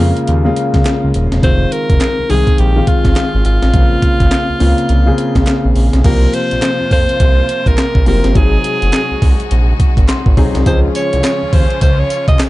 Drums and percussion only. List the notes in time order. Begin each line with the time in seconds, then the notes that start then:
0.17 closed hi-hat
0.27 closed hi-hat
0.56 closed hi-hat
0.74 kick, snare, closed hi-hat
0.85 snare, clap, closed hi-hat
0.87 clap
1.14 closed hi-hat
1.32 snare, closed hi-hat
1.43 kick, closed hi-hat
1.72 closed hi-hat
1.90 kick, closed hi-hat
2.01 snare, clap, closed hi-hat
2.30 open hi-hat
2.47 kick, closed hi-hat
2.58 closed hi-hat
2.87 kick, closed hi-hat
3.05 kick, snare, closed hi-hat
3.16 snare, clap, closed hi-hat
3.45 closed hi-hat
3.62 snare, closed hi-hat
3.74 kick, closed hi-hat
4.02 kick, closed hi-hat
4.20 kick, closed hi-hat
4.31 snare, clap, closed hi-hat
4.60 open hi-hat
4.78 closed hi-hat
4.89 closed hi-hat
5.18 closed hi-hat
5.35 kick, snare, closed hi-hat
5.47 snare, clap, closed hi-hat
5.48 clap
5.76 open hi-hat
5.93 snare, closed hi-hat
6.04 kick, closed hi-hat, crash
6.34 closed hi-hat
6.51 closed hi-hat
6.62 snare, clap, closed hi-hat
6.91 kick, open hi-hat
7.09 closed hi-hat
7.20 kick, closed hi-hat
7.49 closed hi-hat
7.66 kick, closed hi-hat
7.78 snare, clap, closed hi-hat
7.95 kick
8.06 open hi-hat
8.24 snare, closed hi-hat
8.35 kick, closed hi-hat
8.64 closed hi-hat
8.82 closed hi-hat
8.93 snare, clap, closed hi-hat
9.22 kick, open hi-hat
9.40 closed hi-hat
9.51 closed hi-hat
9.80 kick, closed hi-hat
9.97 kick, closed hi-hat
10.08 snare, clap, closed hi-hat
10.26 kick
10.37 kick, open hi-hat
10.55 snare, closed hi-hat
10.66 kick, closed hi-hat, tambourine
10.95 closed hi-hat, tambourine
11.13 closed hi-hat
11.24 snare, clap, closed hi-hat, tambourine
11.53 kick, open hi-hat
11.70 closed hi-hat
11.81 kick, closed hi-hat, tambourine
12.10 closed hi-hat, tambourine
12.28 kick, closed hi-hat
12.39 snare, clap, closed hi-hat, tambourine
12.41 clap